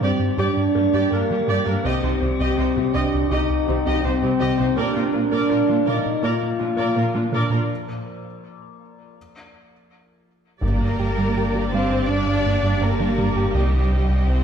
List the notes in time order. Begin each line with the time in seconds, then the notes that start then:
Already playing: G3 D4 G4 D5
0.00 G2 G3 C4 G4 D5
0.20 G2
0.37 G2 G3 D4 G4 D5
0.57 G2
0.75 G2 A#3 G4
0.93 G2 G3 G4 D5
1.10 G2 A#3 D4 G4 A#4
1.29 G2 G3 A#3 D4 G4
1.47 G2 G3 G4 D5
1.66 G2 D4 G4 A#4
1.84 C2 C3 C4 G4 C5 D#5
2.02 C2 C3 D#3 D#4 C5
2.20 C2 C3 C4 G4
2.39 C2 C3 G4 D#5
2.58 C2 C3 C4 D#4 C5
2.76 C3 G3 C4 G4
2.93 C2 C3 D4 G4 C5 D#5
3.14 C2
3.28 C2 C3 D#4 G4 D#5
3.50 C2
3.67 C2 C3 D#3 C4 G4
3.86 C2 C3 G4 D#5
4.03 C2 C3 C4 D#4 C5
4.22 C3 G3 C4 G4
4.40 C2 C3 G4 D#5
4.58 C2 C3 C4 D#4 C5
4.76 A#2 F3 A#3 D4 A#4 D5
4.94 A#2 D4 F4 A#4
5.13 A#2 D4 F4 A#4
5.32 A#2 A#3 A#4 D5
5.49 A#2 F4 A#4
5.68 A#2 A#3 D4 F4
5.86 A#2 A#3 D#4 A#4 D5 F5
6.06 A#2
6.23 A#2 A#3 F4 A#4 D5
6.43 A#2
6.59 A#2 D4 F4
6.77 A#2 A#3 A#4 D5
6.96 A#2 F4 A#4
7.14 A#2 A#3 D4 F4
7.32 A#2 A#3 D4 A#4 D5
7.50 A#2 F4 A#4
10.62 G1 G2 G3 A#3 D4 G4 A#4 D5, taiko
10.81 G2 A#3
11.00 G2 G4
11.18 G2 G3
11.36 G2 G4
11.54 G3 D4
11.72 G2 G3 C4 C5 F5
11.90 G2
12.09 G2 G3 D4 D5
12.27 G2
12.46 G2 A#3
12.63 G2 G3
12.82 G2 A#3 G4 A#4
13.00 G3 D4
13.17 G2 G3
13.36 G2 G4
13.54 C2 C3 G3 D#4 G4 C5 D#5
13.72 C2 D#3
13.91 C2 C4
14.09 C2 C3
14.27 C2 C4 C5